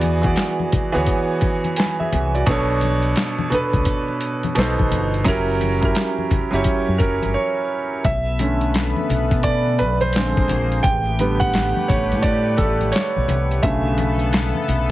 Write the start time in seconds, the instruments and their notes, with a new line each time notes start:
Already playing: fingered electric bass E2, grand piano E3 B3 F#4 G#4 D5
0.01 closed hi-hat, high conga
0.22 grand piano E3 B3 F#4 G#4, kick, closed hi-hat
0.26 grand piano D5
0.36 snare, clap, closed hi-hat
0.60 high conga
0.72 muted fingered electric bass stroke, kick, closed hi-hat, low conga
0.92 fingered electric bass D2, grand piano E3 B3 F#4 G#4, closed hi-hat
0.97 grand piano C#5
1.06 kick, closed hi-hat, muted conga
1.41 kick, closed hi-hat
1.64 closed hi-hat, high conga
1.76 grand piano B4 G#5, snare, closed hi-hat, muted conga
1.81 clap
2.00 grand piano G#4 E5, high conga
2.12 fingered electric bass C2, closed hi-hat, high conga, low conga
2.34 grand piano F#4 D5, closed hi-hat
2.46 fingered electric bass B1, grand piano B2 B3 D4 A4, kick, closed hi-hat
2.51 grand piano C#5
2.81 closed hi-hat, high conga
3.02 closed hi-hat
3.16 snare, clap, closed hi-hat, muted conga
3.39 muted conga, high conga
3.50 grand piano B2 B3 D4 A4, muted fingered electric bass stroke, closed hi-hat, low conga
3.54 grand piano B4
3.73 fingered electric bass C#2, kick, closed hi-hat
3.85 kick, closed hi-hat, muted conga
4.08 muted conga
4.21 closed hi-hat
4.43 closed hi-hat, high conga
4.55 fingered electric bass B1, grand piano B2 B3 D#4 A4, snare, closed hi-hat
4.59 grand piano C5, clap
4.79 fingered electric bass B1, kick, muted conga, high conga
4.91 fingered electric bass G1, closed hi-hat, high conga, low conga
5.14 closed hi-hat
5.24 fingered electric bass F#1, grand piano F#3 C#4 E4 G4 A#4, kick, closed hi-hat, muted conga, low conga
5.48 muted conga
5.61 closed hi-hat, high conga
5.81 grand piano F#3 C#4 E4 G4, kick, closed hi-hat
5.85 grand piano A#4
5.95 snare, clap, closed hi-hat, muted conga
6.18 high conga
6.31 muted fingered electric bass stroke, kick, closed hi-hat, low conga
6.51 fingered electric bass F#1, grand piano F#3 C#4 E4 G4, closed hi-hat
6.55 grand piano C#5
6.64 kick, closed hi-hat, muted conga
6.87 fingered electric bass F#2, muted conga
6.98 fingered electric bass F#1, grand piano A#4, kick, closed hi-hat
7.22 fingered electric bass G1, closed hi-hat, high conga
7.34 grand piano C#5
8.03 fingered electric bass B1, analog synth pad B3 A4 B4, grand piano E5, kick, closed hi-hat, muted conga, low conga
8.39 grand piano D3 A3 C#4, closed hi-hat, high conga
8.61 closed hi-hat
8.74 snare, clap, closed hi-hat
8.96 muted conga, high conga
9.09 fingered electric bass B1, closed hi-hat, low conga
9.31 fingered electric bass B2, kick, closed hi-hat
9.43 grand piano D5, kick, closed hi-hat, muted conga
9.66 muted conga
9.79 fingered electric bass B1, grand piano B4, closed hi-hat
10.01 grand piano C5, closed hi-hat, high conga
10.13 fingered electric bass A#1, grand piano D3 G#3 C4, analog synth pad A#3 G#4 C5, snare, closed hi-hat, muted conga
10.17 clap
10.36 fingered electric bass A#1, kick, muted conga, high conga
10.48 fingered electric bass A#1, closed hi-hat, high conga, low conga
10.72 closed hi-hat
10.82 fingered electric bass A1, analog synth pad A3 G4 B4, grand piano G5, kick, closed hi-hat, muted conga, low conga
11.06 muted conga
11.19 grand piano D3 G3 B3, closed hi-hat, high conga
11.40 grand piano F#5, kick, closed hi-hat
11.54 snare, clap, closed hi-hat
11.77 muted conga, high conga
11.88 fingered electric bass A1, grand piano C#5, kick, closed hi-hat, low conga
12.12 fingered electric bass A2, closed hi-hat
12.22 grand piano D5, kick, closed hi-hat, muted conga
12.57 fingered electric bass A1, grand piano A4, kick, closed hi-hat
12.81 closed hi-hat, high conga
12.92 grand piano C#5, snare, closed hi-hat, muted conga
12.97 clap
13.16 fingered electric bass B1, high conga
13.28 fingered electric bass C2, closed hi-hat, high conga, low conga
13.51 closed hi-hat
13.62 fingered electric bass B1, grand piano C#3 D3 A3 E5, analog synth pad B3 A4 B4, kick, closed hi-hat, muted conga, low conga
13.86 muted conga
13.98 closed hi-hat, high conga
14.19 closed hi-hat
14.33 snare, clap, closed hi-hat
14.55 muted conga, high conga
14.68 fingered electric bass B1, closed hi-hat, low conga